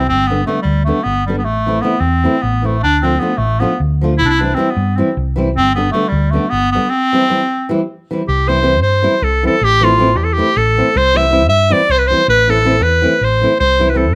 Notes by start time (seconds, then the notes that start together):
Already playing: C2
0.09 G1 C4
0.27 D3 G3 B3
0.32 D4
0.47 D3 G3 A3 B3 D4
0.62 D2 G3
0.85 D3 G3 A3 B3 D4
1.03 G1 B3
1.26 D3 G3 B3 D4
1.39 B3
1.45 A1 A3
1.66 E3 A3 C4 E4
1.81 E3 A3 B3 C4 E4
2.00 E2 C4
2.24 E3 A3 C4 E4
2.42 A1 B3
2.62 E3 A3 C4 E4
2.83 D2 D4
3.00 F3 C4 D4
3.04 A3 D4 F4
3.20 F3 A3 B3 D4 F4
3.37 A1 A3
3.60 F3 A3 B3 D4 F4
3.80 D2
4.01 F3 A3 D4 F4
4.18 C2 E4
4.25 D4 E4
4.38 E3 G3 C4 D4
4.42 E4
4.55 E3 G3 C4 E4
4.70 B3
4.77 G2
4.96 E3 G3 C4 E4
5.17 C2
5.36 E3 G3 C4 E4
5.56 G1 C4
5.75 D3 G3 B3 D4
5.92 D3 G3 A3 B3 D4
6.09 D2 G3
6.31 D3 G3 A3 B3
6.35 D4
6.50 G1 B3
6.72 D3 G3 B3 D4
6.90 C4
7.13 E3 G3 C4 E4
7.29 E3 G3 C4 E4
7.69 E3 G3 C4 E4
8.11 E3 G3 C4 E4
8.28 C2 G4
8.48 E3 G3 C4 E4 C5
8.62 E3 G3 C4 E4
8.81 G2 C5
9.02 E3 G3 C4 E4
9.22 C2 A4
9.43 E3 G3 C4 E4 A4
9.61 A1 G4
9.81 E3 A3 C4 E4 F4
9.98 E3 A3 C4 E4
10.16 E2 G4
10.24 A4
10.33 G4
10.37 E3 A3 C4 E4
10.57 A1 A4
10.77 E3 A3 C4 E4
10.95 C2 C5
11.14 E3 G3 C4 E4 E5
11.30 E3 G3 C4 E4
11.49 G2 E5
11.70 E3 G3 C4 E4 D5
11.89 C2 C5
11.98 B4
12.07 E3 C5
12.12 G3 C4 E4
12.28 A1 B4
12.47 E3 A3 C4 E4 A4
12.65 E3 A3 C4 E4
12.81 E2 B4
13.02 E3 A3 C4 E4
13.21 A1 C5
13.41 E3 A3 C4 E4
13.60 C2 C5
13.79 E3 G3 C4 E4
13.89 B4
13.94 E3 G3 C4 E4 A4
14.12 G2